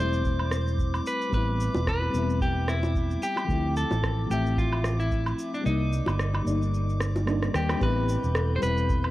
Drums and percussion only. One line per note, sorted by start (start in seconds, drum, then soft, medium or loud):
0.13 cabasa soft
0.24 kick loud
0.24 cabasa soft
0.39 low woodblock medium
0.51 cross-stick medium
0.51 cabasa medium
0.67 cabasa soft
0.79 kick medium
0.79 cabasa soft
0.94 cabasa soft
0.94 low woodblock medium
1.06 cabasa medium
1.21 cabasa soft
1.33 kick loud
1.33 cabasa soft
1.60 cabasa medium
1.74 high bongo medium
1.74 cabasa soft
1.87 kick medium
1.87 cross-stick medium
1.87 cabasa soft
2.01 high bongo soft
2.14 cabasa medium
2.30 cabasa soft
2.41 kick loud
2.41 cabasa soft
2.68 cross-stick medium
2.68 cabasa medium
2.83 high bongo medium
2.83 cabasa soft
2.95 kick medium
2.95 cabasa soft
3.11 cabasa soft
3.23 cabasa medium
3.36 high bongo soft
3.36 cabasa soft
3.36 low woodblock medium
3.49 kick medium
3.49 cabasa soft
3.77 cabasa medium
3.91 high bongo medium
3.91 cabasa soft
4.03 kick medium
4.03 cross-stick medium
4.03 cabasa soft
4.31 cabasa medium
4.46 cabasa soft
4.57 kick loud
4.57 cabasa soft
4.72 low woodblock medium
4.84 cross-stick medium
4.84 cabasa medium
5.00 cabasa soft
5.11 kick medium
5.11 cabasa soft
5.26 cabasa soft
5.26 low woodblock medium
5.39 cabasa medium
5.54 cabasa soft
5.66 cabasa soft
5.93 cabasa medium
6.07 high bongo medium
6.07 cabasa soft
6.07 low woodblock medium
6.20 cross-stick medium
6.20 cabasa soft
6.34 high bongo soft
6.34 low woodblock medium
6.47 cabasa medium
6.62 cabasa soft
6.74 cabasa soft
6.89 cabasa soft
7.00 cross-stick medium
7.00 cabasa medium
7.16 high bongo medium
7.16 cabasa soft
7.27 cross-stick medium
7.27 cabasa soft
7.43 cross-stick medium
7.43 cabasa soft
7.54 cross-stick medium
7.54 cabasa medium
7.69 cross-stick medium
7.69 high bongo soft
7.69 cabasa soft
7.69 low woodblock medium
7.81 kick loud
7.81 cabasa soft
8.09 cabasa medium
8.24 cabasa soft
8.35 cross-stick medium
8.35 cabasa soft
8.62 cabasa medium
8.77 cabasa soft
8.89 kick loud
8.89 cabasa soft
9.04 low woodblock medium